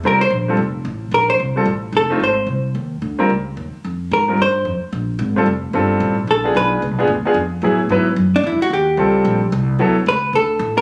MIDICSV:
0, 0, Header, 1, 5, 480
1, 0, Start_track
1, 0, Tempo, 270880
1, 69, Time_signature, 4, 2, 24, 8
1, 19159, End_track
2, 0, Start_track
2, 0, Title_t, "Hollow-body jazz guitar"
2, 0, Program_c, 0, 26
2, 131, Note_on_c, 0, 70, 73
2, 369, Note_off_c, 0, 70, 0
2, 376, Note_on_c, 0, 72, 88
2, 554, Note_off_c, 0, 72, 0
2, 2025, Note_on_c, 0, 70, 65
2, 2290, Note_off_c, 0, 70, 0
2, 2298, Note_on_c, 0, 72, 80
2, 2409, Note_off_c, 0, 72, 0
2, 3484, Note_on_c, 0, 69, 76
2, 3909, Note_off_c, 0, 69, 0
2, 3962, Note_on_c, 0, 72, 74
2, 4389, Note_off_c, 0, 72, 0
2, 7326, Note_on_c, 0, 70, 68
2, 7753, Note_off_c, 0, 70, 0
2, 7827, Note_on_c, 0, 72, 87
2, 8245, Note_off_c, 0, 72, 0
2, 11175, Note_on_c, 0, 69, 65
2, 11600, Note_off_c, 0, 69, 0
2, 11637, Note_on_c, 0, 71, 82
2, 12070, Note_off_c, 0, 71, 0
2, 14809, Note_on_c, 0, 62, 84
2, 14977, Note_off_c, 0, 62, 0
2, 15001, Note_on_c, 0, 64, 73
2, 15261, Note_off_c, 0, 64, 0
2, 15276, Note_on_c, 0, 66, 87
2, 15449, Note_off_c, 0, 66, 0
2, 15475, Note_on_c, 0, 67, 72
2, 16823, Note_off_c, 0, 67, 0
2, 17870, Note_on_c, 0, 71, 87
2, 18298, Note_off_c, 0, 71, 0
2, 18348, Note_on_c, 0, 69, 85
2, 19042, Note_off_c, 0, 69, 0
2, 19096, Note_on_c, 0, 70, 92
2, 19159, Note_off_c, 0, 70, 0
2, 19159, End_track
3, 0, Start_track
3, 0, Title_t, "Grand piano"
3, 0, Program_c, 1, 0
3, 90, Note_on_c, 1, 55, 68
3, 91, Note_on_c, 1, 60, 61
3, 107, Note_on_c, 1, 65, 57
3, 109, Note_on_c, 1, 70, 71
3, 339, Note_off_c, 1, 55, 0
3, 340, Note_off_c, 1, 60, 0
3, 348, Note_off_c, 1, 65, 0
3, 349, Note_off_c, 1, 70, 0
3, 857, Note_on_c, 1, 55, 60
3, 871, Note_on_c, 1, 60, 59
3, 880, Note_on_c, 1, 65, 56
3, 886, Note_on_c, 1, 69, 68
3, 1022, Note_off_c, 1, 55, 0
3, 1029, Note_off_c, 1, 60, 0
3, 1033, Note_off_c, 1, 65, 0
3, 1036, Note_off_c, 1, 69, 0
3, 2764, Note_on_c, 1, 55, 58
3, 2775, Note_on_c, 1, 60, 56
3, 2786, Note_on_c, 1, 69, 69
3, 2787, Note_on_c, 1, 65, 54
3, 2937, Note_off_c, 1, 55, 0
3, 2942, Note_off_c, 1, 60, 0
3, 2948, Note_off_c, 1, 65, 0
3, 2948, Note_off_c, 1, 69, 0
3, 3721, Note_on_c, 1, 57, 64
3, 3734, Note_on_c, 1, 60, 59
3, 3743, Note_on_c, 1, 63, 55
3, 3750, Note_on_c, 1, 65, 70
3, 3897, Note_off_c, 1, 57, 0
3, 3903, Note_off_c, 1, 60, 0
3, 3907, Note_off_c, 1, 63, 0
3, 3911, Note_off_c, 1, 65, 0
3, 5647, Note_on_c, 1, 55, 64
3, 5655, Note_on_c, 1, 60, 59
3, 5664, Note_on_c, 1, 65, 57
3, 5669, Note_on_c, 1, 70, 64
3, 5822, Note_off_c, 1, 55, 0
3, 5825, Note_off_c, 1, 60, 0
3, 5830, Note_off_c, 1, 65, 0
3, 5833, Note_off_c, 1, 70, 0
3, 7587, Note_on_c, 1, 55, 51
3, 7594, Note_on_c, 1, 60, 48
3, 7604, Note_on_c, 1, 65, 52
3, 7616, Note_on_c, 1, 70, 56
3, 7753, Note_off_c, 1, 55, 0
3, 7756, Note_off_c, 1, 60, 0
3, 7761, Note_off_c, 1, 65, 0
3, 7767, Note_off_c, 1, 70, 0
3, 9505, Note_on_c, 1, 55, 65
3, 9519, Note_on_c, 1, 60, 55
3, 9530, Note_on_c, 1, 65, 56
3, 9537, Note_on_c, 1, 69, 69
3, 9673, Note_off_c, 1, 55, 0
3, 9680, Note_off_c, 1, 60, 0
3, 9685, Note_off_c, 1, 65, 0
3, 9689, Note_off_c, 1, 69, 0
3, 10168, Note_on_c, 1, 55, 63
3, 10173, Note_on_c, 1, 60, 58
3, 10179, Note_on_c, 1, 65, 51
3, 10189, Note_on_c, 1, 69, 64
3, 10878, Note_off_c, 1, 55, 0
3, 10880, Note_off_c, 1, 60, 0
3, 10883, Note_off_c, 1, 65, 0
3, 10888, Note_off_c, 1, 69, 0
3, 11412, Note_on_c, 1, 59, 56
3, 11426, Note_on_c, 1, 62, 51
3, 11431, Note_on_c, 1, 65, 51
3, 11437, Note_on_c, 1, 68, 68
3, 12047, Note_off_c, 1, 59, 0
3, 12054, Note_off_c, 1, 62, 0
3, 12057, Note_off_c, 1, 65, 0
3, 12060, Note_off_c, 1, 68, 0
3, 12380, Note_on_c, 1, 59, 70
3, 12387, Note_on_c, 1, 62, 60
3, 12393, Note_on_c, 1, 65, 60
3, 12409, Note_on_c, 1, 68, 68
3, 12550, Note_off_c, 1, 59, 0
3, 12554, Note_off_c, 1, 62, 0
3, 12557, Note_off_c, 1, 65, 0
3, 12565, Note_off_c, 1, 68, 0
3, 12855, Note_on_c, 1, 59, 60
3, 12864, Note_on_c, 1, 62, 59
3, 12869, Note_on_c, 1, 65, 58
3, 12879, Note_on_c, 1, 68, 72
3, 13028, Note_off_c, 1, 59, 0
3, 13032, Note_off_c, 1, 62, 0
3, 13035, Note_off_c, 1, 65, 0
3, 13040, Note_off_c, 1, 68, 0
3, 13519, Note_on_c, 1, 54, 58
3, 13528, Note_on_c, 1, 59, 50
3, 13540, Note_on_c, 1, 64, 57
3, 13544, Note_on_c, 1, 68, 66
3, 13781, Note_off_c, 1, 54, 0
3, 13785, Note_off_c, 1, 59, 0
3, 13791, Note_off_c, 1, 64, 0
3, 13793, Note_off_c, 1, 68, 0
3, 14006, Note_on_c, 1, 59, 62
3, 14011, Note_on_c, 1, 54, 61
3, 14026, Note_on_c, 1, 64, 62
3, 14034, Note_on_c, 1, 71, 74
3, 14264, Note_off_c, 1, 59, 0
3, 14267, Note_off_c, 1, 54, 0
3, 14274, Note_off_c, 1, 64, 0
3, 14278, Note_off_c, 1, 71, 0
3, 15910, Note_on_c, 1, 55, 61
3, 15918, Note_on_c, 1, 65, 52
3, 15924, Note_on_c, 1, 60, 55
3, 15938, Note_on_c, 1, 69, 65
3, 16623, Note_off_c, 1, 55, 0
3, 16627, Note_off_c, 1, 65, 0
3, 16630, Note_off_c, 1, 60, 0
3, 16637, Note_off_c, 1, 69, 0
3, 17355, Note_on_c, 1, 54, 70
3, 17365, Note_on_c, 1, 59, 66
3, 17379, Note_on_c, 1, 64, 64
3, 17388, Note_on_c, 1, 69, 71
3, 17613, Note_off_c, 1, 54, 0
3, 17618, Note_off_c, 1, 59, 0
3, 17625, Note_off_c, 1, 64, 0
3, 17630, Note_off_c, 1, 69, 0
3, 19159, End_track
4, 0, Start_track
4, 0, Title_t, "Upright bass"
4, 0, Program_c, 2, 32
4, 61, Note_on_c, 2, 36, 70
4, 526, Note_off_c, 2, 36, 0
4, 537, Note_on_c, 2, 34, 78
4, 997, Note_off_c, 2, 34, 0
4, 1007, Note_on_c, 2, 29, 74
4, 1486, Note_off_c, 2, 29, 0
4, 1501, Note_on_c, 2, 33, 86
4, 1963, Note_off_c, 2, 33, 0
4, 1973, Note_on_c, 2, 34, 76
4, 2450, Note_off_c, 2, 34, 0
4, 2472, Note_on_c, 2, 36, 78
4, 2922, Note_off_c, 2, 36, 0
4, 2932, Note_on_c, 2, 33, 80
4, 3400, Note_off_c, 2, 33, 0
4, 3410, Note_on_c, 2, 29, 82
4, 3885, Note_off_c, 2, 29, 0
4, 3896, Note_on_c, 2, 32, 73
4, 4357, Note_off_c, 2, 32, 0
4, 4368, Note_on_c, 2, 36, 76
4, 4849, Note_off_c, 2, 36, 0
4, 4866, Note_on_c, 2, 39, 76
4, 5339, Note_off_c, 2, 39, 0
4, 5347, Note_on_c, 2, 38, 77
4, 5820, Note_off_c, 2, 38, 0
4, 5841, Note_on_c, 2, 37, 68
4, 6308, Note_off_c, 2, 37, 0
4, 6325, Note_on_c, 2, 39, 76
4, 6591, Note_off_c, 2, 39, 0
4, 6813, Note_on_c, 2, 41, 75
4, 7274, Note_off_c, 2, 41, 0
4, 7291, Note_on_c, 2, 44, 83
4, 7738, Note_off_c, 2, 44, 0
4, 7748, Note_on_c, 2, 43, 67
4, 8222, Note_off_c, 2, 43, 0
4, 8239, Note_on_c, 2, 41, 82
4, 8510, Note_off_c, 2, 41, 0
4, 8727, Note_on_c, 2, 34, 82
4, 9182, Note_off_c, 2, 34, 0
4, 9193, Note_on_c, 2, 32, 89
4, 9665, Note_off_c, 2, 32, 0
4, 9674, Note_on_c, 2, 29, 75
4, 10146, Note_off_c, 2, 29, 0
4, 10158, Note_on_c, 2, 31, 79
4, 10624, Note_off_c, 2, 31, 0
4, 10635, Note_on_c, 2, 33, 86
4, 11107, Note_off_c, 2, 33, 0
4, 11115, Note_on_c, 2, 34, 83
4, 11587, Note_off_c, 2, 34, 0
4, 11598, Note_on_c, 2, 35, 74
4, 12068, Note_off_c, 2, 35, 0
4, 12085, Note_on_c, 2, 37, 81
4, 12240, Note_off_c, 2, 37, 0
4, 12240, Note_on_c, 2, 35, 51
4, 12389, Note_off_c, 2, 35, 0
4, 12400, Note_on_c, 2, 32, 60
4, 12524, Note_off_c, 2, 32, 0
4, 12535, Note_on_c, 2, 38, 84
4, 12817, Note_off_c, 2, 38, 0
4, 13010, Note_on_c, 2, 41, 86
4, 13485, Note_off_c, 2, 41, 0
4, 13496, Note_on_c, 2, 45, 77
4, 13975, Note_off_c, 2, 45, 0
4, 13986, Note_on_c, 2, 44, 79
4, 14456, Note_off_c, 2, 44, 0
4, 14466, Note_on_c, 2, 42, 90
4, 14935, Note_off_c, 2, 42, 0
4, 14946, Note_on_c, 2, 40, 90
4, 15220, Note_off_c, 2, 40, 0
4, 15419, Note_on_c, 2, 39, 79
4, 15887, Note_off_c, 2, 39, 0
4, 15897, Note_on_c, 2, 37, 78
4, 16372, Note_off_c, 2, 37, 0
4, 16385, Note_on_c, 2, 34, 89
4, 16856, Note_off_c, 2, 34, 0
4, 16873, Note_on_c, 2, 36, 97
4, 17330, Note_off_c, 2, 36, 0
4, 17341, Note_on_c, 2, 38, 73
4, 17812, Note_off_c, 2, 38, 0
4, 17829, Note_on_c, 2, 37, 86
4, 18295, Note_off_c, 2, 37, 0
4, 18305, Note_on_c, 2, 38, 85
4, 18762, Note_off_c, 2, 38, 0
4, 18772, Note_on_c, 2, 33, 92
4, 19159, Note_off_c, 2, 33, 0
4, 19159, End_track
5, 0, Start_track
5, 0, Title_t, "Muted upright bass strokes"
5, 6612, Note_on_c, 9, 29, 35
5, 6789, Note_off_c, 9, 29, 0
5, 8534, Note_on_c, 9, 29, 32
5, 8711, Note_off_c, 9, 29, 0
5, 12828, Note_on_c, 9, 29, 36
5, 13005, Note_off_c, 9, 29, 0
5, 15234, Note_on_c, 9, 29, 38
5, 15411, Note_off_c, 9, 29, 0
5, 19159, End_track
0, 0, End_of_file